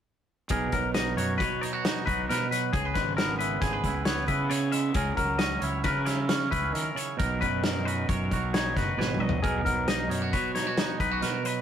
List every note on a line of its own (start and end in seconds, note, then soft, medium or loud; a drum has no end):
0.49 0.71 B1 medium
0.49 2.28 B2 medium
0.49 0.72 G#4 medium
0.49 1.39 A#4 medium
0.49 kick medium
0.49 closed hi-hat medium
0.72 1.14 B1 medium
0.72 2.50 F#3 medium
0.72 0.94 A#4 medium
0.72 kick medium
0.72 closed hi-hat medium
0.94 1.61 D#4 medium
0.94 1.17 D#5 medium
0.94 snare medium
0.94 closed hi-hat medium
1.17 1.37 F#2 medium
1.17 1.61 F#4 soft
1.17 1.37 C#5 medium
1.17 closed hi-hat medium
1.38 2.02 B2 medium
1.38 1.61 B4 medium
1.38 2.29 C#5 soft
1.38 kick medium
1.38 closed hi-hat medium
1.61 1.73 D#4 soft
1.61 2.05 C#5 medium
1.61 closed hi-hat medium
1.73 2.06 F#4 soft
1.85 2.70 D#4 medium
1.85 snare loud
1.85 closed hi-hat medium
2.06 2.27 B1 medium
2.06 2.70 F#4 soft
2.06 2.28 B4 medium
2.06 kick medium
2.06 closed hi-hat medium
2.29 2.70 B2 medium
2.29 2.51 A#4 medium
2.29 2.71 B4 medium
2.29 snare soft
2.29 closed hi-hat medium
2.51 2.73 F#3 soft
2.51 2.73 B4 medium
2.51 closed hi-hat medium
2.73 2.94 C#2 medium
2.73 4.49 C#3 medium
2.73 2.95 G#4 medium
2.73 2.85 G#4 medium
2.73 kick medium
2.73 closed hi-hat medium
2.85 3.61 B4 medium
2.94 3.58 G#1 medium
2.94 4.72 G#3 soft
2.94 3.16 B4 medium
2.94 kick medium
2.94 snare soft
2.94 closed hi-hat soft
3.17 4.05 B3 medium
3.17 3.38 A#4 medium
3.17 snare medium
3.17 closed hi-hat medium
3.39 3.85 E4 medium
3.39 3.61 B4 medium
3.39 closed hi-hat medium
3.61 3.82 G#1 medium
3.61 4.06 G#4 medium
3.61 3.73 G#4 medium
3.61 kick medium
3.61 snare soft
3.61 closed hi-hat medium
3.73 4.50 B4 soft
3.83 4.25 C#2 medium
3.83 4.27 E4 soft
3.83 kick medium
3.83 closed hi-hat soft
4.05 4.95 B3 medium
4.05 4.27 C#5 medium
4.05 snare medium
4.05 closed hi-hat medium
4.28 4.91 C#3 medium
4.28 4.92 E4 medium
4.28 4.50 B4 medium
4.28 kick medium
4.28 closed hi-hat medium
4.50 4.94 C#3 medium
4.50 4.95 G#4 medium
4.50 4.72 C#5 medium
4.50 closed hi-hat medium
4.72 4.92 G#3 medium
4.72 4.94 E5 medium
4.72 closed hi-hat medium
4.94 5.16 C#2 loud
4.94 5.17 C#3 medium
4.94 5.17 G#4 medium
4.94 5.85 A#4 medium
4.94 kick medium
4.94 closed hi-hat medium
5.17 5.59 C#2 medium
5.17 7.39 F#3 medium
5.17 5.39 A#4 medium
5.17 kick medium
5.17 closed hi-hat medium
5.38 6.27 C#4 soft
5.38 5.61 D#5 medium
5.38 snare medium
5.38 closed hi-hat medium
5.61 5.83 C#2 medium
5.61 6.05 E4 medium
5.61 5.83 C#5 medium
5.61 closed hi-hat medium
5.84 6.47 C#3 medium
5.84 7.18 A#4 medium
5.84 6.05 B4 medium
5.84 kick medium
5.84 snare soft
5.84 closed hi-hat medium
6.05 6.50 E4 medium
6.05 6.51 C#5 medium
6.05 snare soft
6.05 closed hi-hat medium
6.29 7.15 C#4 medium
6.29 snare medium
6.29 closed hi-hat medium
6.51 6.72 C#2 medium
6.51 7.15 E4 medium
6.51 6.73 B4 medium
6.51 kick medium
6.51 closed hi-hat medium
6.73 6.95 D#3 medium
6.73 6.96 A#4 medium
6.73 closed hi-hat medium
6.95 7.18 C#3 medium
6.95 7.19 C#5 medium
6.95 closed hi-hat soft
7.17 7.40 B1 medium
7.17 8.97 B2 medium
7.17 7.40 A#4 medium
7.17 8.09 A#4 medium
7.17 kick medium
7.17 closed hi-hat medium
7.39 8.04 F#2 medium
7.39 9.19 F#3 medium
7.39 7.63 B4 medium
7.39 kick medium
7.39 closed hi-hat soft
7.63 8.53 D#4 soft
7.63 7.85 A#4 medium
7.63 snare medium
7.63 closed hi-hat medium
7.85 8.32 F#4 medium
7.85 8.08 B4 medium
7.85 closed hi-hat soft
8.08 8.29 F#2 medium
8.08 8.53 A#4 medium
8.08 8.98 C#5 medium
8.08 kick medium
8.08 closed hi-hat medium
8.31 8.73 B1 medium
8.31 8.75 F#4 soft
8.31 kick medium
8.31 closed hi-hat medium
8.54 9.41 D#4 medium
8.54 8.76 C#5 medium
8.54 snare loud
8.54 closed hi-hat medium
8.76 8.96 F#1 medium
8.76 9.40 F#4 medium
8.76 8.98 B4 medium
8.76 kick medium
8.76 snare soft
8.76 closed hi-hat medium
8.97 9.17 G#1 medium
8.97 9.40 B2 medium
8.97 9.43 B4 medium
8.97 9.20 C#5 medium
8.97 snare soft
9.14 mid tom medium
9.20 9.40 A#1 medium
9.20 9.64 F#3 medium
9.20 9.42 D#5 medium
9.29 floor tom medium
9.43 9.64 B1 medium
9.43 11.20 B2 medium
9.43 9.65 G#4 medium
9.43 10.33 A#4 medium
9.43 kick medium
9.43 closed hi-hat medium
9.65 10.07 B1 medium
9.65 11.42 F#3 soft
9.65 9.87 A#4 medium
9.65 kick medium
9.65 closed hi-hat medium
9.88 10.09 D#4 soft
9.88 10.10 D#5 medium
9.88 snare medium
9.88 closed hi-hat medium
10.08 10.30 F#2 medium
10.08 10.22 D#4 medium
10.08 10.32 C#5 medium
10.08 closed hi-hat medium
10.22 10.55 F#4 soft
10.33 10.96 B2 medium
10.33 10.54 B4 medium
10.33 11.22 C#5 medium
10.33 kick medium
10.33 closed hi-hat medium
10.55 10.67 D#4 soft
10.55 11.00 C#5 medium
10.55 snare soft
10.55 closed hi-hat medium
10.67 11.00 F#4 soft
10.78 10.99 D#4 medium
10.78 snare medium
10.78 closed hi-hat medium
11.00 11.21 B1 medium
11.00 11.11 D#4 medium
11.00 11.22 B4 medium
11.00 kick medium
11.00 closed hi-hat soft
11.11 11.62 F#4 soft
11.22 11.62 B2 medium
11.22 11.46 A#4 medium
11.22 11.62 B4 medium
11.22 snare soft
11.22 closed hi-hat medium
11.44 11.62 F#3 medium
11.44 11.62 B4 medium
11.44 closed hi-hat medium